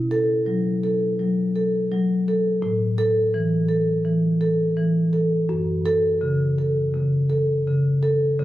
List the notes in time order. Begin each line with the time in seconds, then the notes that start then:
Already playing: B2
0.11 A4
0.46 F#3
0.84 A4
1.19 F#3
1.56 A4
1.91 F#3
2.28 A4
2.62 A2
2.98 A4
3.34 E3
3.69 A4
4.05 E3
4.41 A4
4.77 E3
5.13 A4
5.49 F#2
5.86 A4
6.21 C#3
6.58 A4
6.94 C#3
7.30 A4
7.67 C#3
8.03 A4
8.39 C#3